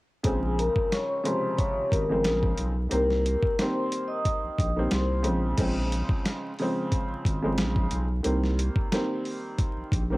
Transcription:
0.24 A#1 C#3 F3 G#3 C4 G#4 G#5, kick, closed hi-hat
0.59 A#4 A#5, closed hi-hat
0.76 kick
0.92 C#5 C#6, snare, closed hi-hat
1.09 C#5 C#6
1.24 C3 C#3 F3 G#3 C5 C6, closed hi-hat
1.58 C#5 C#6, kick, closed hi-hat
1.77 G#1
1.91 G#1 A#4 A#5, kick, closed hi-hat
2.09 C#3 F3 G#3 C4
2.24 A#1, snare, closed hi-hat
2.43 kick
2.57 B1, closed hi-hat
2.89 C2 D#3 G3 A#3 C4 A#4 A#5, closed hi-hat
3.10 snare
3.26 closed hi-hat
3.43 kick
3.58 D#3 G3 A#3 C4 C5 C6, snare, closed hi-hat
3.92 closed hi-hat
4.08 D#5 D#6
4.25 kick, closed hi-hat
4.44 A#1
4.59 A#1, kick, closed hi-hat
4.76 D#3 G3 A#3 C4
4.91 C2 C5 C6, snare, closed hi-hat
5.23 A#1 C#3 F3 G#3 C4, closed hi-hat
5.57 A#1 C#3 F3 G#3 C4, kick, closed hi-hat, crash
5.92 closed hi-hat
6.09 kick
6.25 snare, closed hi-hat
6.59 C#3 F3 G#3 C4, open hi-hat
6.92 kick, closed hi-hat
7.10 G#1
7.25 G#1, kick, closed hi-hat
7.42 C#3 F3 G#3 C4
7.58 A#1, snare, closed hi-hat
7.76 kick
7.91 B1, closed hi-hat
8.23 C2 D#3 G3 A#3 C4, closed hi-hat
8.44 snare
8.59 closed hi-hat
8.76 kick
8.92 D#3 G3 A#3 C4, snare, closed hi-hat
9.25 open hi-hat
9.58 kick, closed hi-hat
9.77 A#1
9.92 A#1, kick, closed hi-hat
10.10 D#3 G3 A#3 C4

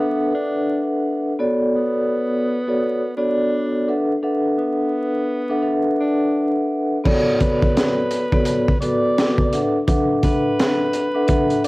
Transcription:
Already playing: B3 D4 A4
0.00 B4 E5 F#5
0.35 D4
1.39 B3 F#4 A4 C#5 D5
1.75 B3
2.67 B3 F#4 A4 C#5 D5
3.17 B3 D4 F#4 A4 C#5 D5
3.88 D4 A4 B4 E5 F#5
4.23 D4 A4 B4 E5 F#5
4.58 B3
5.49 D4 A4 B4 E5 F#5
5.62 D4 A4 B4 E5 F#5
6.00 D4
7.04 B3 F#4 A4 C#5 D5, kick, crash
7.40 B4, kick, closed hi-hat
7.62 kick
7.77 snare, closed hi-hat
8.11 closed hi-hat
8.32 B3 F#4 A4 C#5 D5, kick
8.45 closed hi-hat
8.68 kick
8.80 B3 F#4 A4 B4 D5, closed hi-hat
9.18 snare, closed hi-hat
9.38 kick
9.53 D4 A4 B4 E5 F#5, closed hi-hat
9.87 D4 A4 B4 E5 F#5, kick, closed hi-hat
10.23 B4, kick, closed hi-hat
10.59 snare, closed hi-hat
10.93 closed hi-hat
11.14 D4 A4 B4 E5 F#5
11.27 D4 A4 B4 E5 F#5, kick, closed hi-hat
11.50 closed hi-hat
11.64 D5, closed hi-hat

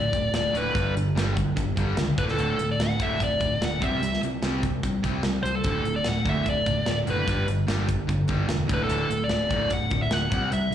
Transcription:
Already playing: D2 A2 D5
0.12 D1 D2 A2, kick, closed hi-hat
0.33 D1 D2 A2 D5, snare, closed hi-hat
0.53 D1 D2 A2 D3, closed hi-hat
0.57 B4
0.73 G1 G2 D3 G3, kick, closed hi-hat
0.94 G1 G2 D3, closed hi-hat
1.15 G1 G2 D3 G3, snare, closed hi-hat
1.37 G2 D3, kick, closed hi-hat
1.56 G1 G2 D3, kick, closed hi-hat
1.76 G1 G2 D3 G3, kick, closed hi-hat
1.96 C#2 G2 D3, snare, closed hi-hat
2.18 D1 D2 A2 D3 B4, kick, closed hi-hat
2.28 A4, snare
2.38 D1 D2 A2 D3 A4, closed hi-hat
2.59 D1 D2 A2, closed hi-hat
2.72 D5
2.79 D1 D2 A2 F#5, snare, closed hi-hat
2.99 D1 D2 A2 D3 E5, kick, closed hi-hat
3.19 D1 D2 A2, kick, closed hi-hat
3.23 D5
3.40 D1 D2 A2, kick, closed hi-hat
3.60 D1 D2 A2 F#5, snare, closed hi-hat
3.80 C2 C3 G3 C4 E5, kick, closed hi-hat
4.00 C2 C3 G3, closed hi-hat
4.13 snare
4.21 C2 C3 G3, closed hi-hat
4.42 C2 C3 G3 C4, snare, closed hi-hat
4.63 C3 G3, kick, closed hi-hat
4.83 C2 C3 G3, kick, closed hi-hat
5.03 C2 C3 G3 C4, kick, closed hi-hat
5.23 C2 C3 G3, snare, closed hi-hat
5.43 C2 C3 G3 C5, closed hi-hat
5.55 A4
5.64 D1 D2 A2 D3 A4, kick, closed hi-hat
5.83 D1 D2 A2, closed hi-hat
5.96 D5
6.04 D1 D2 A2 F#5, snare, closed hi-hat
6.25 D1 D2 A2 D3, kick, closed hi-hat
6.29 E5
6.46 D1 D2 A2 D5, kick, closed hi-hat
6.66 D1 D2 A2, kick, closed hi-hat
6.86 D1 D2 A2, snare, closed hi-hat
6.92 D5
7.06 F#1 D2 A2 D3 B4, closed hi-hat
7.26 G1 G2 D3 G3, kick, closed hi-hat
7.46 G1 G2 D3, closed hi-hat
7.67 G1 G2 D3 G3, snare, closed hi-hat
7.87 G2 D3, kick, closed hi-hat
8.08 G1 G2 D3, kick, closed hi-hat
8.28 G1 G2 D3 G3, kick, closed hi-hat
8.49 E1 G2 D3, snare, closed hi-hat
8.67 D1 D2 A2 D3, kick, closed hi-hat
8.74 B4
8.83 D2 A4
8.88 D1 A2 D3, closed hi-hat
8.93 A4
9.09 D1 D2 A2, closed hi-hat
9.24 D5
9.29 D1 D2 A2, snare, closed hi-hat
9.34 D5
9.49 D1 D2 A2 D3, kick, closed hi-hat
9.69 D1 D2 A2, kick, closed hi-hat
9.73 F#5
9.90 D1 D2 A2, kick, closed hi-hat
10.02 E5
10.11 D1 D2 A2 F#5, snare, closed hi-hat
10.30 C2 C3 G3 C4, kick, closed hi-hat
10.51 C2 C3 G3 E5, closed hi-hat
10.71 C3 G3

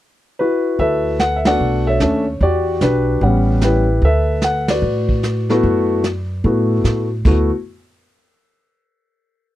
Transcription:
0.39 E4 F#4 B4
0.79 D2 A4 B4 E5, brush sweep, kick
1.19 F#5, snare, hi-hat pedal
1.36 E5
1.45 A3 B3 D4 F#4 A4 D5 F#5, snare, ride
1.60 B1, brush sweep
1.87 A4 C#5 E5
2.00 D#2 A3 C#4 D4 A4, snare, hi-hat pedal
2.41 E2 F#4 G4 D5, brush sweep, kick
2.81 B1 D4 G4 B4, snare, hi-hat pedal
3.21 A1 G3 B3 C#4 F#5, brush sweep, kick
3.61 E4 G4 B4, snare, hi-hat pedal
4.02 D2 A4 B4 E5, brush sweep, kick
4.41 F#5, snare, hi-hat pedal
4.68 F#4 B4 D5, snare, ride
4.82 A2, brush sweep
5.09 kick
5.23 snare, hi-hat pedal
5.50 A3 B3 E4 F#4, snare
5.63 F#2, brush sweep, kick
6.04 snare, hi-hat pedal
6.44 A2 A3 B3 E4 F#4, brush sweep, kick
6.84 A2, snare, hi-hat pedal
7.25 D2 A3 B3 E4 F#4, kick, floor tom, crash

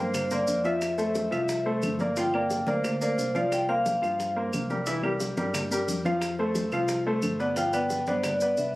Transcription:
Already playing: G2 A#3 A#4
0.00 C5
0.14 C5, high bongo, high conga, low conga, claves, maracas
0.31 A#3 A#4 C5 D5, high conga, low conga, maracas
0.47 F2, high bongo, low bongo, high conga, maracas
0.64 F3 F4 E5, high bongo, maracas
0.81 high bongo, high conga, claves, maracas
0.98 A3 A4 C5, high bongo, high conga, maracas
1.15 high bongo, high conga, maracas
1.31 C2 F3 F4 E5, high bongo, high conga, claves, maracas
1.49 high bongo, high conga, maracas
1.66 A3 A4 C5, high conga
1.82 G1, high bongo, low bongo, high conga, claves, maracas
1.99 A#3 A#4 D5, high bongo, high conga, maracas
2.16 F3 F4 F5 G5, high bongo, maracas
2.33 A#3 A#4 D5, high bongo, high conga, claves
2.50 high bongo, high conga, maracas
2.67 D2 A#3 A#4 C5 D5, high bongo, high conga, maracas
2.84 high bongo, high conga, low conga, claves, maracas
3.01 A#3 A#4 C5 D5, high conga, maracas
3.18 C2, high bongo, low bongo, high conga, maracas
3.35 F3 F4 D5 F5, high bongo, high conga, maracas
3.52 G5, high bongo, high conga, claves, maracas
3.69 A#3 A#4 C5 F5, high bongo, high conga
3.86 high bongo, high conga, maracas
4.02 G2 F3 F4 F5, high bongo, high conga, claves, maracas
4.20 high bongo, high conga, maracas
4.36 A#3 A#4 C5, high conga
4.53 C2, high bongo, low bongo, high conga, claves, maracas
4.70 G3 G4 A#4, high bongo, high conga, maracas
4.86 E3 E4 E5, high bongo, high conga, maracas
5.03 G3 G4 A#4, high bongo, high conga, claves
5.20 high bongo, high conga, maracas
5.37 G2 G3 G4 A#4, high bongo, high conga, maracas
5.54 high bongo, high conga, low conga, claves, maracas
5.71 G3 G4 A#4, high conga, maracas
5.88 F2, high bongo, low bongo, high conga, maracas
6.05 F3 F4 F5, high bongo, high conga, maracas
6.21 high bongo, high conga, claves, maracas
6.38 A3 A4 C5, high bongo, high conga
6.55 high bongo, high conga, maracas
6.72 C2 F3 F4 F5, high bongo, high conga, claves, maracas
6.88 high bongo, high conga, maracas
7.06 A3 A4 C5, high conga
7.22 G1, high bongo, low bongo, high conga, claves, maracas
7.40 B3 B4 D5, high bongo, maracas
7.56 F3 F4 F5 G5, high bongo, high conga, maracas
7.73 B3 B4 D5, high bongo, high conga, claves, maracas
7.90 high bongo, high conga, maracas
8.06 G2 B3 B4 C5 D5, high bongo, high conga, maracas
8.23 D5, high bongo, high conga, low conga, claves, maracas
8.40 B3 B4 D5, high conga, maracas
8.57 C2 E5, high bongo, low bongo, high conga, maracas

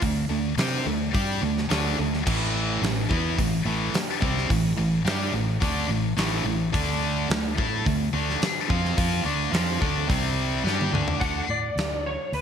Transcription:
0.00 D2 D3 A3, kick, open hi-hat
0.29 D2 D3 A3
0.57 C3 C4 G4 C5, snare, open hi-hat
0.86 D2 D3 A3
1.14 G2 G3 D4 G4, kick, open hi-hat
1.42 D2 D3 A3
1.58 snare
1.69 D2 D3 A3 D4, snare, open hi-hat
1.98 D2 D3 A3
2.14 snare
2.26 A1 A2 E3 A3, kick, crash
2.82 A1 A2 E3, snare, open hi-hat
3.09 E2 E3 B3 E4, kick
3.38 A1 A2 E3, kick, open hi-hat
3.65 A1 A2 E3 A3
3.93 muted distorted electric guitar stroke, muted fingered electric bass stroke, snare, open hi-hat
4.20 C2 C3 G3 C4, kick
4.37 snare
4.49 A1 A2 E3, kick, open hi-hat
4.78 A1 A2 E3
5.05 G2 G3 D4 G4, snare, open hi-hat
5.32 A1 A2 E3
5.61 D2 D3 A3 D4, kick, open hi-hat
5.89 A1 A2 E3
6.17 A1 A2 E3 A3, snare, open hi-hat
6.44 A1 A2 E3
6.73 D2 D3 A3 D4, kick, open hi-hat
7.29 D2 D3 A3, snare, open hi-hat
7.58 A2 A3 E4 A4, kick
7.85 D2 D3 A3, kick, open hi-hat
8.13 D2 D3 A3 D4
8.30 snare
8.41 muted fingered electric bass stroke, muted distorted electric guitar stroke, snare, open hi-hat
8.70 F2 F3 C4 F4, kick
8.85 snare
8.97 F2 F3 C4 F4, kick, open hi-hat
9.25 D2 D3 A3 D4
9.52 F2 F3 C4 F4, snare, open hi-hat
9.80 D2 D3 A3 D4, kick
10.08 C2 C3 G3 C4, kick, open hi-hat
10.64 G2 G3 D4 G4, snare
10.81 high tom
10.92 D2 D3 A3 D4, mid tom
11.08 floor tom
11.20 D2 D3 A3 D4 F#5, kick, open hi-hat
11.49 A2 D5
11.76 D2, snare, open hi-hat
12.06 C#5
12.32 D2 B4, open hi-hat

